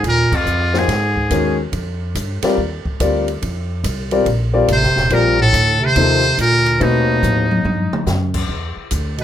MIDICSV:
0, 0, Header, 1, 7, 480
1, 0, Start_track
1, 0, Tempo, 423131
1, 37, Time_signature, 4, 2, 24, 8
1, 10477, End_track
2, 0, Start_track
2, 0, Title_t, "Muted trumpet"
2, 0, Program_c, 0, 59
2, 101, Note_on_c, 0, 70, 89
2, 407, Note_on_c, 0, 65, 85
2, 424, Note_off_c, 0, 70, 0
2, 891, Note_on_c, 0, 68, 82
2, 908, Note_off_c, 0, 65, 0
2, 1821, Note_off_c, 0, 68, 0
2, 5366, Note_on_c, 0, 72, 109
2, 5829, Note_on_c, 0, 70, 93
2, 5846, Note_off_c, 0, 72, 0
2, 6126, Note_off_c, 0, 70, 0
2, 6149, Note_on_c, 0, 69, 113
2, 6638, Note_on_c, 0, 72, 117
2, 6655, Note_off_c, 0, 69, 0
2, 7261, Note_off_c, 0, 72, 0
2, 7271, Note_on_c, 0, 70, 97
2, 7744, Note_on_c, 0, 63, 81
2, 7761, Note_off_c, 0, 70, 0
2, 9169, Note_off_c, 0, 63, 0
2, 10477, End_track
3, 0, Start_track
3, 0, Title_t, "Grand piano"
3, 0, Program_c, 1, 0
3, 835, Note_on_c, 1, 72, 76
3, 836, Note_on_c, 1, 53, 62
3, 838, Note_on_c, 1, 68, 61
3, 841, Note_on_c, 1, 58, 61
3, 846, Note_on_c, 1, 63, 60
3, 984, Note_off_c, 1, 72, 0
3, 985, Note_off_c, 1, 53, 0
3, 985, Note_off_c, 1, 68, 0
3, 987, Note_off_c, 1, 58, 0
3, 989, Note_off_c, 1, 63, 0
3, 1481, Note_on_c, 1, 51, 60
3, 1486, Note_on_c, 1, 66, 56
3, 1488, Note_on_c, 1, 56, 56
3, 1489, Note_on_c, 1, 61, 52
3, 1491, Note_on_c, 1, 70, 66
3, 1761, Note_off_c, 1, 51, 0
3, 1764, Note_off_c, 1, 56, 0
3, 1764, Note_off_c, 1, 66, 0
3, 1765, Note_off_c, 1, 61, 0
3, 1766, Note_off_c, 1, 70, 0
3, 2768, Note_on_c, 1, 55, 85
3, 2769, Note_on_c, 1, 60, 73
3, 2769, Note_on_c, 1, 70, 74
3, 2770, Note_on_c, 1, 65, 77
3, 2772, Note_on_c, 1, 74, 86
3, 2911, Note_off_c, 1, 55, 0
3, 2911, Note_off_c, 1, 70, 0
3, 2912, Note_off_c, 1, 60, 0
3, 2912, Note_off_c, 1, 65, 0
3, 2913, Note_off_c, 1, 74, 0
3, 3409, Note_on_c, 1, 65, 57
3, 3410, Note_on_c, 1, 60, 55
3, 3411, Note_on_c, 1, 74, 74
3, 3413, Note_on_c, 1, 70, 57
3, 3415, Note_on_c, 1, 55, 62
3, 3685, Note_off_c, 1, 60, 0
3, 3685, Note_off_c, 1, 65, 0
3, 3686, Note_off_c, 1, 74, 0
3, 3687, Note_off_c, 1, 70, 0
3, 3688, Note_off_c, 1, 55, 0
3, 4672, Note_on_c, 1, 55, 81
3, 4673, Note_on_c, 1, 65, 70
3, 4675, Note_on_c, 1, 70, 70
3, 4680, Note_on_c, 1, 60, 72
3, 4682, Note_on_c, 1, 74, 83
3, 4823, Note_off_c, 1, 55, 0
3, 4824, Note_off_c, 1, 65, 0
3, 4824, Note_off_c, 1, 70, 0
3, 4827, Note_off_c, 1, 60, 0
3, 4828, Note_off_c, 1, 74, 0
3, 5146, Note_on_c, 1, 60, 74
3, 5146, Note_on_c, 1, 70, 67
3, 5149, Note_on_c, 1, 55, 74
3, 5150, Note_on_c, 1, 74, 89
3, 5154, Note_on_c, 1, 65, 76
3, 5300, Note_off_c, 1, 60, 0
3, 5300, Note_off_c, 1, 70, 0
3, 5301, Note_off_c, 1, 55, 0
3, 5302, Note_off_c, 1, 74, 0
3, 5304, Note_off_c, 1, 65, 0
3, 5800, Note_on_c, 1, 60, 59
3, 5804, Note_on_c, 1, 55, 64
3, 5806, Note_on_c, 1, 74, 71
3, 5810, Note_on_c, 1, 65, 56
3, 5812, Note_on_c, 1, 70, 57
3, 6080, Note_off_c, 1, 60, 0
3, 6082, Note_off_c, 1, 55, 0
3, 6083, Note_off_c, 1, 74, 0
3, 6085, Note_off_c, 1, 65, 0
3, 6086, Note_off_c, 1, 70, 0
3, 6772, Note_on_c, 1, 53, 72
3, 6773, Note_on_c, 1, 58, 58
3, 6775, Note_on_c, 1, 72, 78
3, 6777, Note_on_c, 1, 63, 66
3, 6781, Note_on_c, 1, 69, 62
3, 7045, Note_off_c, 1, 53, 0
3, 7046, Note_off_c, 1, 58, 0
3, 7047, Note_off_c, 1, 72, 0
3, 7048, Note_off_c, 1, 63, 0
3, 7050, Note_off_c, 1, 69, 0
3, 7713, Note_on_c, 1, 71, 80
3, 7716, Note_on_c, 1, 57, 66
3, 7716, Note_on_c, 1, 60, 60
3, 7717, Note_on_c, 1, 66, 63
3, 7720, Note_on_c, 1, 63, 64
3, 8444, Note_off_c, 1, 71, 0
3, 8445, Note_off_c, 1, 57, 0
3, 8445, Note_off_c, 1, 60, 0
3, 8446, Note_off_c, 1, 66, 0
3, 8447, Note_off_c, 1, 63, 0
3, 10477, End_track
4, 0, Start_track
4, 0, Title_t, "Bass clarinet"
4, 0, Program_c, 2, 71
4, 64, Note_on_c, 2, 46, 81
4, 379, Note_on_c, 2, 41, 72
4, 396, Note_off_c, 2, 46, 0
4, 871, Note_on_c, 2, 44, 72
4, 888, Note_off_c, 2, 41, 0
4, 1811, Note_off_c, 2, 44, 0
4, 5324, Note_on_c, 2, 48, 91
4, 5790, Note_on_c, 2, 46, 90
4, 5807, Note_off_c, 2, 48, 0
4, 6106, Note_off_c, 2, 46, 0
4, 6122, Note_on_c, 2, 45, 91
4, 6591, Note_on_c, 2, 48, 101
4, 6608, Note_off_c, 2, 45, 0
4, 7238, Note_off_c, 2, 48, 0
4, 7250, Note_on_c, 2, 46, 85
4, 7719, Note_on_c, 2, 39, 76
4, 7736, Note_off_c, 2, 46, 0
4, 9157, Note_off_c, 2, 39, 0
4, 10411, Note_on_c, 2, 47, 82
4, 10477, Note_off_c, 2, 47, 0
4, 10477, End_track
5, 0, Start_track
5, 0, Title_t, "Upright bass"
5, 0, Program_c, 3, 32
5, 38, Note_on_c, 3, 39, 82
5, 328, Note_off_c, 3, 39, 0
5, 518, Note_on_c, 3, 41, 82
5, 984, Note_off_c, 3, 41, 0
5, 995, Note_on_c, 3, 44, 89
5, 1463, Note_off_c, 3, 44, 0
5, 1478, Note_on_c, 3, 39, 74
5, 1944, Note_off_c, 3, 39, 0
5, 1954, Note_on_c, 3, 41, 79
5, 2422, Note_off_c, 3, 41, 0
5, 2438, Note_on_c, 3, 43, 81
5, 2729, Note_off_c, 3, 43, 0
5, 2922, Note_on_c, 3, 39, 84
5, 3211, Note_off_c, 3, 39, 0
5, 3402, Note_on_c, 3, 38, 83
5, 3866, Note_off_c, 3, 38, 0
5, 3881, Note_on_c, 3, 41, 80
5, 4346, Note_off_c, 3, 41, 0
5, 4352, Note_on_c, 3, 36, 83
5, 4821, Note_off_c, 3, 36, 0
5, 4828, Note_on_c, 3, 34, 85
5, 5299, Note_off_c, 3, 34, 0
5, 5314, Note_on_c, 3, 33, 86
5, 5472, Note_on_c, 3, 29, 63
5, 5489, Note_off_c, 3, 33, 0
5, 5621, Note_off_c, 3, 29, 0
5, 5628, Note_on_c, 3, 27, 67
5, 5782, Note_off_c, 3, 27, 0
5, 5792, Note_on_c, 3, 34, 85
5, 6261, Note_off_c, 3, 34, 0
5, 6270, Note_on_c, 3, 38, 96
5, 6739, Note_off_c, 3, 38, 0
5, 6760, Note_on_c, 3, 39, 86
5, 7224, Note_off_c, 3, 39, 0
5, 7234, Note_on_c, 3, 38, 87
5, 7701, Note_off_c, 3, 38, 0
5, 7721, Note_on_c, 3, 47, 89
5, 8184, Note_off_c, 3, 47, 0
5, 8200, Note_on_c, 3, 45, 94
5, 8663, Note_off_c, 3, 45, 0
5, 8672, Note_on_c, 3, 43, 87
5, 8964, Note_off_c, 3, 43, 0
5, 9148, Note_on_c, 3, 42, 86
5, 9617, Note_off_c, 3, 42, 0
5, 9632, Note_on_c, 3, 40, 76
5, 9924, Note_off_c, 3, 40, 0
5, 10111, Note_on_c, 3, 38, 83
5, 10477, Note_off_c, 3, 38, 0
5, 10477, End_track
6, 0, Start_track
6, 0, Title_t, "Muted upright bass strokes"
6, 359, Note_on_c, 9, 29, 41
6, 473, Note_off_c, 9, 29, 0
6, 2748, Note_on_c, 9, 29, 37
6, 2862, Note_off_c, 9, 29, 0
6, 3237, Note_on_c, 9, 29, 41
6, 3350, Note_off_c, 9, 29, 0
6, 8978, Note_on_c, 9, 29, 37
6, 9092, Note_off_c, 9, 29, 0
6, 9945, Note_on_c, 9, 29, 38
6, 10059, Note_off_c, 9, 29, 0
6, 10477, End_track
7, 0, Start_track
7, 0, Title_t, "Drums"
7, 46, Note_on_c, 9, 51, 67
7, 159, Note_off_c, 9, 51, 0
7, 363, Note_on_c, 9, 36, 85
7, 368, Note_on_c, 9, 49, 79
7, 476, Note_off_c, 9, 36, 0
7, 481, Note_off_c, 9, 49, 0
7, 522, Note_on_c, 9, 44, 59
7, 635, Note_off_c, 9, 44, 0
7, 838, Note_on_c, 9, 38, 60
7, 951, Note_off_c, 9, 38, 0
7, 1007, Note_on_c, 9, 51, 62
7, 1013, Note_on_c, 9, 38, 39
7, 1121, Note_off_c, 9, 51, 0
7, 1126, Note_off_c, 9, 38, 0
7, 1321, Note_on_c, 9, 36, 53
7, 1435, Note_off_c, 9, 36, 0
7, 1481, Note_on_c, 9, 44, 59
7, 1481, Note_on_c, 9, 51, 64
7, 1594, Note_off_c, 9, 44, 0
7, 1594, Note_off_c, 9, 51, 0
7, 1960, Note_on_c, 9, 51, 57
7, 2073, Note_off_c, 9, 51, 0
7, 2443, Note_on_c, 9, 44, 53
7, 2443, Note_on_c, 9, 51, 62
7, 2556, Note_off_c, 9, 44, 0
7, 2556, Note_off_c, 9, 51, 0
7, 2750, Note_on_c, 9, 51, 74
7, 2756, Note_on_c, 9, 38, 49
7, 2864, Note_off_c, 9, 51, 0
7, 2869, Note_off_c, 9, 38, 0
7, 3238, Note_on_c, 9, 36, 64
7, 3352, Note_off_c, 9, 36, 0
7, 3404, Note_on_c, 9, 44, 54
7, 3404, Note_on_c, 9, 51, 69
7, 3518, Note_off_c, 9, 44, 0
7, 3518, Note_off_c, 9, 51, 0
7, 3719, Note_on_c, 9, 51, 47
7, 3833, Note_off_c, 9, 51, 0
7, 3885, Note_on_c, 9, 51, 61
7, 3998, Note_off_c, 9, 51, 0
7, 4359, Note_on_c, 9, 44, 49
7, 4359, Note_on_c, 9, 51, 72
7, 4472, Note_off_c, 9, 44, 0
7, 4472, Note_off_c, 9, 51, 0
7, 4664, Note_on_c, 9, 51, 49
7, 4777, Note_off_c, 9, 51, 0
7, 4833, Note_on_c, 9, 51, 57
7, 4947, Note_off_c, 9, 51, 0
7, 5314, Note_on_c, 9, 44, 62
7, 5314, Note_on_c, 9, 51, 71
7, 5427, Note_off_c, 9, 44, 0
7, 5427, Note_off_c, 9, 51, 0
7, 5480, Note_on_c, 9, 38, 27
7, 5593, Note_off_c, 9, 38, 0
7, 5638, Note_on_c, 9, 38, 42
7, 5751, Note_off_c, 9, 38, 0
7, 5790, Note_on_c, 9, 51, 61
7, 5903, Note_off_c, 9, 51, 0
7, 6283, Note_on_c, 9, 44, 51
7, 6283, Note_on_c, 9, 51, 66
7, 6396, Note_off_c, 9, 44, 0
7, 6396, Note_off_c, 9, 51, 0
7, 6759, Note_on_c, 9, 51, 62
7, 6872, Note_off_c, 9, 51, 0
7, 7243, Note_on_c, 9, 44, 59
7, 7243, Note_on_c, 9, 51, 74
7, 7356, Note_off_c, 9, 44, 0
7, 7356, Note_off_c, 9, 51, 0
7, 7558, Note_on_c, 9, 51, 51
7, 7672, Note_off_c, 9, 51, 0
7, 7725, Note_on_c, 9, 51, 56
7, 7839, Note_off_c, 9, 51, 0
7, 8199, Note_on_c, 9, 44, 55
7, 8204, Note_on_c, 9, 48, 47
7, 8312, Note_off_c, 9, 44, 0
7, 8318, Note_off_c, 9, 48, 0
7, 8519, Note_on_c, 9, 48, 77
7, 8633, Note_off_c, 9, 48, 0
7, 8681, Note_on_c, 9, 48, 70
7, 8794, Note_off_c, 9, 48, 0
7, 8995, Note_on_c, 9, 47, 89
7, 9109, Note_off_c, 9, 47, 0
7, 9147, Note_on_c, 9, 44, 61
7, 9153, Note_on_c, 9, 38, 55
7, 9261, Note_off_c, 9, 44, 0
7, 9267, Note_off_c, 9, 38, 0
7, 9461, Note_on_c, 9, 49, 81
7, 9466, Note_on_c, 9, 36, 74
7, 9574, Note_off_c, 9, 49, 0
7, 9580, Note_off_c, 9, 36, 0
7, 10104, Note_on_c, 9, 44, 61
7, 10104, Note_on_c, 9, 51, 66
7, 10217, Note_off_c, 9, 44, 0
7, 10217, Note_off_c, 9, 51, 0
7, 10419, Note_on_c, 9, 51, 47
7, 10477, Note_off_c, 9, 51, 0
7, 10477, End_track
0, 0, End_of_file